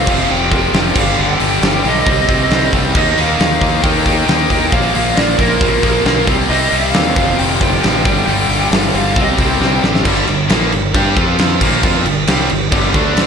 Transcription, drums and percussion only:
0.07 kick, crash
0.51 kick, open hi-hat
0.74 snare, open hi-hat
0.95 kick, crash
1.40 open hi-hat
1.62 snare, open hi-hat
1.85 open hi-hat
2.06 kick, open hi-hat
2.29 kick, open hi-hat
2.51 snare, open hi-hat
2.73 kick, open hi-hat
2.95 kick, crash
3.17 open hi-hat
3.40 snare, open hi-hat
3.61 kick, open hi-hat
3.84 kick, open hi-hat
4.06 kick, open hi-hat
4.28 snare, open hi-hat
4.50 kick, open hi-hat
4.72 kick, open hi-hat
4.95 open hi-hat
5.17 snare, open hi-hat
5.39 kick, open hi-hat
5.61 kick, open hi-hat
5.83 kick, open hi-hat
6.05 snare, open hi-hat
6.27 kick, open hi-hat
6.50 open hi-hat
6.72 open hi-hat
6.94 snare, open hi-hat
7.16 kick, open hi-hat
7.39 open hi-hat
7.61 kick, open hi-hat
7.83 snare, open hi-hat
8.05 kick, open hi-hat
8.28 open hi-hat
8.50 open hi-hat
8.72 snare, open hi-hat
8.94 open hi-hat
9.16 kick, open hi-hat
9.38 kick, open hi-hat
9.62 snare
9.84 snare
9.95 snare
10.05 kick, crash
10.27 crash
10.50 snare, crash
10.72 crash
10.94 kick, crash
11.16 kick, crash
11.39 snare, crash
11.61 kick, snare, crash
11.83 kick, crash
12.06 crash
12.27 snare, crash
12.50 crash
12.72 kick, crash
12.94 kick, crash
13.17 snare, crash

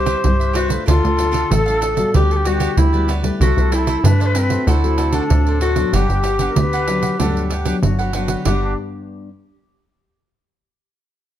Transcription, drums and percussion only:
0.06 pandeiro
0.24 pandeiro
0.41 pandeiro
0.55 pandeiro
0.70 pandeiro
0.88 pandeiro
1.05 pandeiro
1.19 pandeiro
1.34 pandeiro
1.51 pandeiro
1.68 pandeiro
1.82 pandeiro
1.97 pandeiro
2.14 pandeiro
2.31 pandeiro
2.45 pandeiro
2.60 pandeiro
2.77 pandeiro
2.94 pandeiro
3.09 pandeiro
3.24 pandeiro
3.41 pandeiro
3.58 pandeiro
3.72 pandeiro
3.87 pandeiro
4.05 pandeiro
4.21 pandeiro
4.35 pandeiro
4.50 pandeiro
4.68 pandeiro
4.84 pandeiro
4.98 pandeiro
5.12 pandeiro
5.30 pandeiro
5.47 pandeiro
5.61 pandeiro
5.76 pandeiro
5.93 pandeiro
6.10 pandeiro
6.24 pandeiro
6.39 pandeiro
6.56 pandeiro
6.73 pandeiro
6.88 pandeiro
7.03 pandeiro
7.20 pandeiro
7.37 pandeiro
7.50 pandeiro
7.65 pandeiro
7.83 pandeiro
7.99 pandeiro
8.13 pandeiro
8.28 pandeiro
8.45 pandeiro

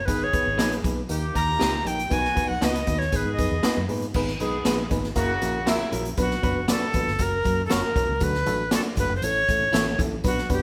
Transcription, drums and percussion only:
0.08 kick, closed hi-hat, tambourine
0.33 kick, closed hi-hat, tambourine, high conga
0.58 snare, closed hi-hat, tambourine, muted conga, high conga
0.72 closed hi-hat
0.82 kick, closed hi-hat, tambourine, muted conga, high conga, low conga
1.09 closed hi-hat, tambourine
1.34 kick, closed hi-hat, tambourine, muted conga
1.49 high conga
1.59 snare, closed hi-hat, tambourine, muted conga
1.72 high conga
1.85 closed hi-hat, tambourine, muted conga, low conga
1.99 closed hi-hat
2.11 kick, closed hi-hat, tambourine
2.25 snare
2.37 kick, closed hi-hat, tambourine, muted conga, high conga
2.62 snare, closed hi-hat, tambourine, high conga
2.75 closed hi-hat
2.87 kick, closed hi-hat, tambourine, muted conga, high conga, low conga
3.01 snare
3.12 kick, closed hi-hat, tambourine
3.38 kick, closed hi-hat, tambourine
3.53 high conga
3.63 snare, closed hi-hat, tambourine
3.76 high conga
3.89 open hi-hat, tambourine, low conga
4.02 closed hi-hat
4.14 kick, crash, tambourine, muted conga, low conga
4.28 snare
4.40 closed hi-hat, tambourine, muted conga, high conga
4.65 snare, closed hi-hat, tambourine, high conga
4.90 kick, closed hi-hat, tambourine, high conga, low conga
5.04 snare
5.16 kick, closed hi-hat, tambourine, muted conga
5.42 closed hi-hat, tambourine
5.56 high conga
5.66 snare, closed hi-hat, tambourine, muted conga
5.80 high conga
5.92 closed hi-hat, tambourine, low conga
6.05 closed hi-hat
6.17 kick, closed hi-hat, tambourine, low conga
6.31 snare
6.43 kick, closed hi-hat, tambourine, muted conga, high conga
6.68 snare, closed hi-hat, tambourine, muted conga, high conga
6.93 kick, closed hi-hat, tambourine, muted conga, low conga
7.08 snare
7.18 kick, closed hi-hat, tambourine
7.44 kick, closed hi-hat, tambourine, muted conga
7.60 high conga
7.70 snare, closed hi-hat, tambourine
7.84 high conga
7.96 kick, closed hi-hat, tambourine, muted conga, low conga
8.20 kick, closed hi-hat, tambourine, muted conga, low conga
8.34 snare
8.46 closed hi-hat, tambourine, muted conga, high conga
8.71 snare, closed hi-hat, tambourine, high conga
8.96 kick, closed hi-hat, tambourine, muted conga, low conga
9.22 closed hi-hat, tambourine
9.48 kick, closed hi-hat, tambourine
9.62 high conga
9.73 snare, closed hi-hat, tambourine, muted conga
9.86 high conga
9.99 kick, closed hi-hat, tambourine, low conga
10.24 kick, closed hi-hat, tambourine, muted conga, low conga
10.38 snare
10.50 kick, closed hi-hat, tambourine, muted conga, high conga

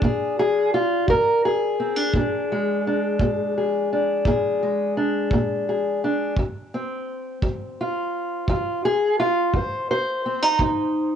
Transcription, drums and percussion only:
0.02 kick
1.08 kick
2.14 kick
3.19 kick
4.25 kick
5.31 kick
6.37 kick
7.42 kick
8.48 kick
9.54 kick
10.59 kick

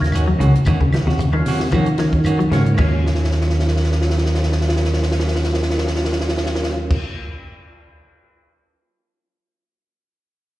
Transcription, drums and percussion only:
0.04 snare, closed hi-hat
0.12 closed hi-hat, high conga, claves, shekere
0.28 high conga
0.40 closed hi-hat, high conga, low conga, shekere
0.55 closed hi-hat
0.65 kick, closed hi-hat, high conga, low conga, claves, shekere
0.81 kick
0.92 snare, closed hi-hat, high conga, claves, shekere
1.09 snare
1.18 closed hi-hat, high conga, shekere
1.33 high conga, claves
1.45 open hi-hat, shekere
1.59 snare, high conga
1.72 kick, closed hi-hat, claves, shekere
1.86 closed hi-hat
1.98 snare, closed hi-hat, shekere
2.13 kick, closed hi-hat
2.24 closed hi-hat, high conga, claves, shekere
2.40 closed hi-hat
2.52 snare, closed hi-hat, high conga, low conga, shekere
2.65 closed hi-hat, low conga
2.77 kick, crash, low conga, claves, shekere
3.06 snare
3.15 snare
3.24 snare
3.31 snare
3.41 snare
3.50 snare
3.60 snare
3.68 snare
3.77 snare
3.84 snare
3.92 snare
4.02 snare
4.10 snare
4.18 snare
4.26 snare
4.35 snare
4.43 snare
4.52 snare
4.61 snare
4.69 snare
4.76 snare
4.85 snare
4.94 snare
5.03 snare
5.12 snare
5.20 snare
5.28 snare
5.36 snare
5.44 snare
5.54 snare
5.63 snare
5.70 snare
5.78 snare
5.87 snare
5.96 snare
6.05 snare
6.12 snare
6.21 snare
6.29 snare
6.37 snare
6.46 snare
6.55 snare
6.63 snare
6.90 kick, crash

